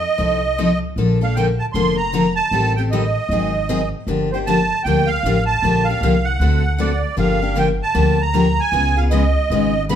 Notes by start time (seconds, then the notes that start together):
Already playing: D#5
0.18 C2 F3 C4 D#4 A4
0.58 F3 C4 D#4 A4
0.96 A#1 D3 F3 A#3 D4 A4
1.21 A#3 D4 A4 F5
1.35 D3 F3 A#3 D4 A4 G5
1.59 A5
1.73 F1 D3 F3 A#3 D4 A4 C6
1.97 A#5
2.13 D3 F3 A#3 D4 A4
2.36 A5
2.51 A1 D#3 G3 C4 G4 A4
2.76 C4 G4 A4 G5
2.91 D#3 G3 C4 G4 A4 D#5
3.29 G#1 D#3 F#3 C4 D#4 G#4
3.69 D#3 F#3 C4 D#4 G#4
4.07 G1 D3 F3 A#3 D4 G4
4.32 A#3 D4 G4 C5
4.46 D3 F3 A#3 D4 G4 A5
4.84 D2 D3 F3 A#3 D4 G4 G5
5.07 F5
5.23 A1 D3 F3 A#3 D4 G4
5.46 A5
5.62 A#1 D3 F3 A#3 D4 G4
5.85 F5
5.89 A#3 D4 G4
6.01 C2 D3 F3 A#3 D4 G4
6.24 F#5
6.40 D2 D3 A3 C4 F#4 A4
6.78 D3 A3 C4 F#4 A4 D5
7.17 G1 D3 F3 A#3 D4 G4 F5
7.42 A#3 D4 G4
7.55 D3 F3 A#3 D4 G4 G5
7.83 A5
7.95 D2 D3 F3 A#3 D4 G4
8.21 A#5
8.34 D3 F3 A#3 D4 G4
8.60 G#5
8.72 C#2 C#3 G#3 B3 F4 G#4
8.97 B3 F4 G#4 F5
9.11 C#3 G#3 B3 F4 G#4 D#5
9.50 G#1 C#3 G#3 B3 F4 G#4
9.89 C#3 G#3 B3 F4 G#4 B5